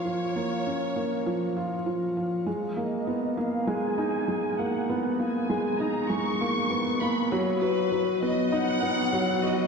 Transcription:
<<
  \new Staff \with { instrumentName = "Violin section" } { \time 4/4 \key gis \dorian \tempo 4 = 99 cis''2. r4 | r8 dis''4 eis''8 gis''4. fis''8 | r8 gis''4 ais''8 cis'''4. b''8 | r8 b'4 dis''8 fis''4. dis''8 | }
  \new Staff \with { instrumentName = "Felt piano" } { \time 4/4 \key gis \dorian eis8 ais8 cis'8 ais8 eis8 eis'8 eis8 eis8 | gis8 ais8 b8 ais8 gis8 dis'8 gis8 ais8 | b8 ais8 gis8 dis'8 gis8 ais8 b8 ais8 | fis8 fis'8 fis8 b8 dis'8 b8 fis8 fis'8 | }
>>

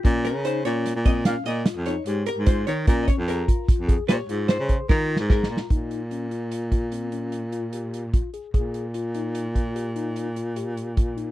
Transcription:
<<
  \new Staff \with { instrumentName = "Hollow-body jazz guitar" } { \time 7/4 \key bes \dorian \tempo 4 = 148 r8 bes'8 c''8 des''4 ees''8 f''8 ees''4 des''4 bes'8 c''8 des''8 | bes'16. ees''32 des''8 bes'4 r4 des''4 c''4 bes'4 bes'4 | r1. r4 | r1. r4 | }
  \new Staff \with { instrumentName = "Tine electric piano" } { \time 7/4 \key bes \dorian des'4 ees'8 des'4 c'8 des'8 f'4 ees'8 g'4 f'8 ees'8 | des'4 aes'8 f'4 aes'8 g'8 f'4 aes'8 f'4 aes'8 f'8 | ees'4 des'8 f'4 f'8 c'8 des'4 f'8 g'4 f'8 aes'8 | aes'4 f'8 ees'4 f'8 g'8 ees'4 f'8 g'4 f'8 ees'8 | }
  \new Staff \with { instrumentName = "Baritone saxophone" } { \clef bass \time 7/4 \key bes \dorian bes,8. des8. bes,8. bes,8. bes,16 r16 bes,8 r16 f,8 r16 aes,8 r16 aes,8. ees8 | bes,8 r16 f,8. r8. f,8 r16 bes,16 r16 aes,8. des8 r16 ees8. aes,8. bes,16 r16 | bes,1.~ bes,16 r8. | bes,1.~ bes,4 | }
  \new DrumStaff \with { instrumentName = "Drums" } \drummode { \time 7/4 <hh bd>8 <hh sn>8 hh8 hh8 <hh sn>8 <hh bd>8 <hh sn>8 hh8 <hh sn>8 hh8 hh8 hh8 <hh bd>8 hh8 | <hh bd>8 <hh bd>8 hh8 <hh bd>8 <hh bd>8 <hh bd>8 <hh sn>8 hh8 <hh sn>8 <hh bd>8 \tuplet 3/2 { <bd sn>8 r8 sn8 <bd sn>8 sn8 sn8 } | <hh bd>8 hh8 hh8 hh8 hh8 <hh bd>8 hh8 hh8 hh8 hh8 hh8 hh8 <hh bd>8 hh8 | <hh bd>8 hh8 hh8 hh8 hh8 <hh bd>8 hh8 hh8 hh8 hh8 hh8 hh8 <hh bd>8 hh8 | }
>>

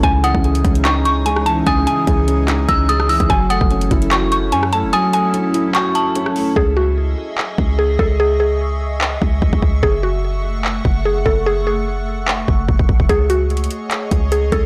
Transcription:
<<
  \new Staff \with { instrumentName = "Synth bell" } { \time 4/4 \key cis \minor \tempo 4 = 147 r8 dis'''8 r4 cis'''8 cis'''8 r4 | dis'''2~ dis'''8 e'''8 dis'''8 e'''8 | r8 dis'''8 r4 cis'''8 cis'''8 r4 | dis'''2 cis'''8 a''4. |
r1 | r1 | r1 | r1 |
r1 | }
  \new Staff \with { instrumentName = "Synth pluck" } { \time 4/4 \key cis \minor gis''8 fis''2~ fis''8 gis''8 a''8 | gis''8 gis''2.~ gis''8 | gis''8 fis''2~ fis''8 gis''8 a''8 | gis''8 gis''2.~ gis''8 |
gis'8 fis'2~ fis'8 gis'8 a'8 | gis'8 gis'2.~ gis'8 | gis'8 fis'2~ fis'8 gis'8 a'8 | gis'8 gis'2.~ gis'8 |
gis'8 fis'2~ fis'8 gis'8 a'8 | }
  \new Staff \with { instrumentName = "Ambient pad" } { \time 4/4 \key cis \minor << { <e cis' dis'>1~ | <e cis' dis'>1 | <fis cis' e'>1~ | <fis cis' e'>1 |
<gis' dis'' e''>1~ | <gis' dis'' e''>1 | <a fis''>1~ | <a fis''>1 |
<gis' cis'' dis''>1 | } \\ { gis'1~ | gis'1 | a'1~ | a'1 |
cis'''1~ | cis'''1~ | cis'''1~ | cis'''1~ |
cis'''1 | } >> }
  \new Staff \with { instrumentName = "Felt piano" } { \time 4/4 \key cis \minor cis8 e8 gis8 cis'8 dis'4 gis8 e8 | cis8 e8 gis8 cis'8 dis'4 gis8 e8 | fis8 a8 cis'8 e'4. cis'8 a8 | fis8 a8 cis'8 e'8 fis'4 cis'8 a8 |
r1 | r1 | r1 | r1 |
r1 | }
  \new Staff \with { instrumentName = "808-style bass" } { \clef bass \time 4/4 \key cis \minor cis,8. cis,8. cis,2~ cis,8 | cis,8 r8 cis,4. cis,4~ cis,16 cis,16 | fis,,8. fis,,8. fis,,4. fis,8. fis,,16 | r1 |
cis,4. r4 cis,4 cis,8~ | cis,2~ cis,8 cis,8 cis,16 cis,16 cis,8 | fis,,2~ fis,,8 fis,,4 fis,,8~ | fis,,2~ fis,,8 fis,,8 fis,,16 fis,,16 a,,16 fis,,16 |
cis,4. r4 cis,4 cis,8 | }
  \new DrumStaff \with { instrumentName = "Drums" } \drummode { \time 4/4 <hh bd>8 hh16 bd16 hh16 hh16 <hh bd>16 hh16 <hc hh ss>8 hh8 hh16 ss16 hh8 | <hh bd>8 hh8 <hh bd>8 hh8 <hc hh ss>8 <hh bd>8 hh16 ss16 <hh hho>16 <hh bd>16 | <hh bd>8 hh16 bd16 hh16 hh16 <hh bd>16 hh16 <hc hh ss>8 hh8 hh16 ss16 hh8 | hh8 hh8 hh8 hh8 <hc hh>8 hh8 hh16 ss16 hho8 |
bd4 r4 hc8 bd8 r8 bd8 | r4 r4 hc8 bd8 bd16 bd16 bd8 | bd4 r4 hc8 bd8 r8 bd8 | r4 r4 hc8 bd8 bd16 bd16 bd16 bd16 |
<hh bd>8 hh8 \tuplet 3/2 { hh16 hh16 hh16 hh16 r16 r16 } <hc hh>8 <hh bd>8 hh8 <hh bd>8 | }
>>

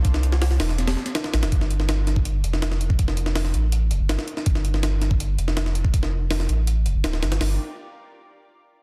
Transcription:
<<
  \new Staff \with { instrumentName = "Analog synth pad" } { \time 4/4 \key d \minor \tempo 4 = 163 <f' a' c'' d''>1 | r1 | r1 | r1 |
r1 | r1 | }
  \new Staff \with { instrumentName = "Sub bass" } { \clef bass \time 4/4 \key d \minor c,4. e,,4 r4 a,,16 e,,16 | g,,2~ g,,8 f,,4.~ | f,,4. a,,4 f,,16 g,,8 r8. | g,,2~ g,,8 f,,4.~ |
f,,4. a,,4 f,,16 g,,16 d,,8 g,,8 | g,,8 r2. r8 | }
  \new DrumStaff \with { instrumentName = "Drums" } \drummode { \time 4/4 <hh bd>16 sn16 hh16 sn16 <hho sn>16 sn16 <hho sn>16 sn16 <hh sn>16 <hho sn>16 sn16 <hh sn>16 <hh sn>16 sn16 <hh sn>16 <hh sn>16 | <hh bd>16 sn16 hh16 sn16 <hh sn>8 <hh sn>16 bd16 hh8 hh16 sn16 <hh sn>16 sn16 hh16 bd16 | <hh bd>16 sn16 hh16 sn16 <hho sn>16 sn16 hh8 hh8 hh8 <hh sn>16 sn16 hh16 sn16 | <hh bd>16 sn16 hh16 sn16 <hh sn>8 <hh sn>16 bd16 hh8 hh16 sn16 <hh sn>16 sn16 hh16 bd16 |
<hh bd>16 sn8. <hho sn>16 sn16 hh8 hh8 hh8 <hh sn>16 sn16 <hh sn>16 <hh sn>16 | <hho sn>4 r4 r4 r4 | }
>>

